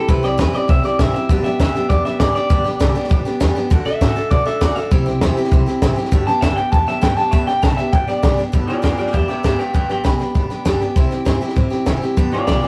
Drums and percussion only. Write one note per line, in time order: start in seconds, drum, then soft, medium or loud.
0.08 kick loud
0.08 snare soft
0.24 snare soft
0.39 kick loud
0.39 snare loud
0.39 hi-hat pedal medium
0.54 snare soft
0.69 kick loud
0.69 snare soft
0.84 snare soft
0.99 kick loud
0.99 snare loud
0.99 hi-hat pedal medium
1.15 snare soft
1.29 kick loud
1.29 snare soft
1.45 snare soft
1.60 kick medium
1.60 snare loud
1.60 hi-hat pedal medium
1.75 snare soft
1.90 kick loud
1.90 snare soft
2.05 snare soft
2.20 kick medium
2.20 snare loud
2.20 hi-hat pedal medium
2.35 snare soft
2.50 kick loud
2.50 snare soft
2.66 snare soft
2.81 kick medium
2.81 snare loud
2.81 hi-hat pedal medium
2.96 snare soft
3.04 snare soft
3.11 kick loud
3.11 snare soft
3.26 snare soft
3.41 kick medium
3.41 snare loud
3.41 hi-hat pedal medium
3.56 snare soft
3.71 kick loud
3.71 snare soft
3.87 snare soft
4.01 kick medium
4.01 snare loud
4.01 hi-hat pedal medium
4.17 snare soft
4.31 kick loud
4.31 snare soft
4.47 snare soft
4.61 kick medium
4.61 snare loud
4.61 hi-hat pedal medium
4.77 snare soft
4.91 kick loud
4.91 snare soft
5.07 snare soft
5.21 kick medium
5.21 snare loud
5.21 hi-hat pedal medium
5.37 snare soft
5.44 snare soft
5.51 kick loud
5.51 snare soft
5.67 snare soft
5.82 kick medium
5.82 snare loud
5.82 hi-hat pedal medium
5.97 snare soft
6.05 snare soft
6.12 kick loud
6.12 snare soft
6.27 snare soft
6.42 kick medium
6.42 snare loud
6.42 hi-hat pedal medium
6.58 snare soft
6.73 kick loud
6.73 snare soft
6.88 snare soft
7.03 kick loud
7.03 snare loud
7.03 hi-hat pedal medium
7.18 snare soft
7.33 kick loud
7.33 snare soft
7.49 snare soft
7.63 kick medium
7.63 snare loud
7.63 hi-hat pedal medium
7.78 snare soft
7.93 kick loud
7.93 snare soft
8.08 snare soft
8.23 kick medium
8.23 snare loud
8.23 hi-hat pedal medium
8.39 snare soft
8.54 kick loud
8.54 snare soft
8.69 snare soft
8.84 kick medium
8.84 snare loud
8.84 hi-hat pedal medium
8.99 snare soft
9.07 snare soft
9.14 kick loud
9.14 snare soft
9.29 snare soft
9.44 kick medium
9.44 snare loud
9.44 hi-hat pedal medium
9.60 snare soft
9.74 kick loud
9.74 snare soft
9.90 snare soft
10.05 kick medium
10.05 snare loud
10.05 hi-hat pedal medium
10.20 snare soft
10.35 kick loud
10.35 snare soft
10.50 snare soft
10.66 kick medium
10.66 snare loud
10.66 hi-hat pedal medium
10.81 snare soft
10.96 kick loud
10.96 snare soft
11.11 snare soft
11.26 kick medium
11.26 snare loud
11.26 hi-hat pedal medium
11.42 snare soft
11.49 snare soft
11.56 kick loud
11.56 snare soft
11.71 snare soft
11.86 kick medium
11.86 snare loud
11.86 hi-hat pedal medium
12.02 snare soft
12.17 kick loud
12.17 snare soft
12.33 snare soft
12.47 kick medium
12.47 snare loud
12.47 hi-hat pedal medium
12.63 snare soft